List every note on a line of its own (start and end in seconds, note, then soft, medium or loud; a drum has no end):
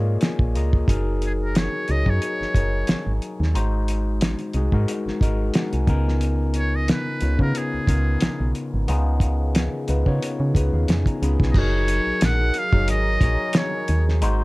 0.00 0.18 G#2 medium
0.00 0.55 A#3 medium
0.00 0.56 F4 medium
0.00 0.56 G#4 medium
0.00 0.90 C#5 loud
0.00 0.90 D5 medium
0.00 0.57 D#5 medium
0.07 0.21 F5 medium
0.21 0.52 G#5 medium
0.21 snare loud
0.21 closed hi-hat medium
0.39 0.57 A#1 medium
0.39 kick medium
0.55 0.85 C#2 medium
0.55 0.83 A#3 medium
0.55 0.84 F4 medium
0.55 0.84 G#4 medium
0.55 0.85 D#5 medium
0.55 0.86 A#5 medium
0.55 closed hi-hat soft
0.73 kick medium
0.88 1.69 F#1 medium
0.88 1.74 F#3 medium
0.88 1.75 D#4 medium
0.88 1.75 G#4 medium
0.88 1.76 A#4 medium
0.88 kick loud
0.88 closed hi-hat medium
1.22 1.33 G#4 medium
1.22 closed hi-hat medium
1.44 1.59 A#4 medium
1.55 1.93 C#5 medium
1.55 snare loud
1.55 closed hi-hat medium
1.88 2.05 C#2 medium
1.88 2.04 F#3 medium
1.88 2.04 D#4 medium
1.88 2.04 G#4 medium
1.88 2.05 C#5 medium
1.88 2.11 D#5 medium
1.88 closed hi-hat medium
2.06 2.20 F#2 medium
2.06 2.48 F#3 medium
2.06 2.48 D#4 medium
2.06 2.49 G#4 medium
2.06 2.49 C#5 medium
2.06 3.23 C#5 medium
2.06 kick medium
2.22 closed hi-hat medium
2.41 2.46 F#1 soft
2.41 snare soft
2.55 2.84 F#1 medium
2.55 3.41 F#3 medium
2.55 3.42 D#4 soft
2.55 3.42 G#4 medium
2.55 3.42 A#4 medium
2.55 kick medium
2.55 closed hi-hat medium
2.87 2.96 G#1 soft
2.87 snare loud
2.87 closed hi-hat medium
3.07 3.20 G#1 medium
3.22 closed hi-hat soft
3.40 3.57 D#2 medium
3.40 snare soft
3.54 4.35 G#1 medium
3.54 4.41 G#3 medium
3.54 4.41 D#4 medium
3.54 4.41 F#4 medium
3.54 4.42 C5 loud
3.54 closed hi-hat medium
3.88 closed hi-hat medium
4.21 snare loud
4.21 closed hi-hat medium
4.39 closed hi-hat soft
4.53 4.70 C2 medium
4.53 4.70 G#3 medium
4.53 4.70 D#4 medium
4.53 4.71 F#4 medium
4.53 4.71 G#4 medium
4.53 closed hi-hat soft
4.72 4.86 G#2 loud
4.72 5.14 G#3 medium
4.72 5.14 D#4 medium
4.72 5.15 F#4 medium
4.72 5.15 A#4 medium
4.72 kick medium
4.88 closed hi-hat medium
5.06 5.12 G#1 soft
5.06 snare soft
5.21 5.51 G#1 medium
5.21 5.79 G#3 medium
5.21 5.79 D#4 medium
5.21 5.80 F#4 medium
5.21 5.80 A#4 medium
5.21 5.53 D#5 medium
5.21 kick medium
5.21 closed hi-hat medium
5.54 5.72 F#5 medium
5.54 snare loud
5.54 closed hi-hat medium
5.73 5.87 C2 medium
5.73 5.87 G#5 medium
5.73 closed hi-hat soft
5.87 6.92 C#2 medium
5.87 7.03 C#3 medium
5.87 7.03 B3 medium
5.87 7.03 D#4 medium
5.87 7.04 F4 medium
5.87 7.04 A#4 medium
5.87 6.19 G#5 medium
5.87 kick medium
5.87 closed hi-hat soft
6.08 snare soft
6.21 closed hi-hat medium
6.54 6.77 C#5 medium
6.54 closed hi-hat medium
6.76 6.89 D#5 medium
6.88 7.37 B4 medium
6.88 snare loud
6.88 closed hi-hat medium
7.21 7.38 C#2 medium
7.21 7.36 C#3 medium
7.21 7.37 B3 soft
7.21 7.37 D#4 medium
7.21 7.37 F4 medium
7.21 7.37 C#5 medium
7.21 closed hi-hat medium
7.38 7.81 C#3 medium
7.38 7.53 C#3 medium
7.38 7.81 B3 medium
7.38 7.81 D#4 medium
7.38 7.82 F4 medium
7.38 7.59 A#4 medium
7.38 7.82 B4 medium
7.38 kick medium
7.55 8.56 G#4 medium
7.55 closed hi-hat medium
7.74 7.80 C#2 soft
7.87 8.17 C#2 medium
7.87 8.74 C#3 medium
7.87 8.74 B3 medium
7.87 8.74 D#4 medium
7.87 8.75 F4 medium
7.87 8.75 A#4 medium
7.87 kick medium
7.87 closed hi-hat medium
8.21 snare loud
8.21 closed hi-hat medium
8.40 8.53 B1 medium
8.55 closed hi-hat soft
8.74 8.87 G#1 medium
8.88 9.69 C#2 medium
8.88 9.74 C#3 medium
8.88 9.74 B3 medium
8.88 9.75 D#4 medium
8.88 9.75 F4 medium
8.88 9.75 G#4 loud
8.88 closed hi-hat medium
9.20 kick medium
9.20 closed hi-hat medium
9.55 snare loud
9.55 closed hi-hat medium
9.88 10.04 C#2 medium
9.88 10.03 C#3 medium
9.88 10.04 B3 medium
9.88 10.04 D#4 medium
9.88 10.04 F4 medium
9.88 10.04 B4 medium
9.88 closed hi-hat medium
10.06 10.48 C#3 medium
10.06 10.20 C#3 medium
10.06 10.48 B3 medium
10.06 10.48 D#4 medium
10.06 10.48 F4 medium
10.06 10.49 C#5 medium
10.06 kick medium
10.22 closed hi-hat medium
10.40 10.53 C#3 medium
10.55 10.71 C#2 medium
10.55 11.13 C#3 medium
10.55 11.13 B3 medium
10.55 11.13 D#4 medium
10.55 11.13 F4 medium
10.55 11.14 B4 medium
10.55 10.72 D#5 medium
10.55 kick medium
10.55 closed hi-hat medium
10.73 10.87 D#2 medium
10.73 10.88 F5 medium
10.88 11.04 F2 medium
10.88 11.05 G#5 medium
10.88 snare loud
10.88 closed hi-hat medium
11.06 11.21 A#5 medium
11.06 kick medium
11.06 closed hi-hat soft
11.22 11.38 C#2 medium
11.22 11.50 C#3 medium
11.22 11.51 B3 medium
11.22 11.51 D#4 medium
11.22 11.51 F4 medium
11.22 11.52 G#4 medium
11.22 11.53 B5 medium
11.22 closed hi-hat medium
11.40 11.53 B1 medium
11.40 kick medium
11.40 snare soft
11.51 14.18 F#3 medium
11.51 14.18 D#4 medium
11.51 14.18 G#4 medium
11.51 14.18 A#4 loud
11.51 11.60 D#5 medium
11.51 kick loud
11.55 12.00 F#1 loud
11.55 12.55 F#3 medium
11.55 12.55 D#4 medium
11.55 12.55 G#4 medium
11.55 12.56 A#4 medium
11.55 12.27 C#5 medium
11.55 crash medium
11.88 closed hi-hat medium
12.07 12.13 A#1 soft
12.21 12.51 A#1 medium
12.21 snare loud
12.21 closed hi-hat medium
12.25 12.60 F#5 loud
12.54 closed hi-hat medium
12.59 12.90 F5 medium
12.73 12.91 F#1 loud
12.73 13.14 F#3 medium
12.73 13.15 D#4 medium
12.73 13.15 G#4 medium
12.73 13.16 C#5 medium
12.73 kick medium
12.88 13.18 G#1 medium
12.88 13.59 D#5 medium
12.88 closed hi-hat medium
13.21 13.37 A#1 medium
13.21 14.08 F#3 medium
13.21 14.08 D#4 medium
13.21 14.08 G#4 medium
13.21 14.09 C#5 medium
13.21 kick medium
13.21 closed hi-hat medium
13.53 snare loud
13.53 closed hi-hat medium
13.57 14.07 C#5 medium
13.88 14.24 D#2 medium
13.88 closed hi-hat medium
14.09 snare soft
14.21 14.44 G#1 loud
14.21 14.44 G#3 medium
14.21 14.44 G#3 loud
14.21 14.44 C4 medium
14.21 14.44 D#4 loud
14.21 14.44 F#4 medium
14.21 14.44 C5 loud
14.21 closed hi-hat medium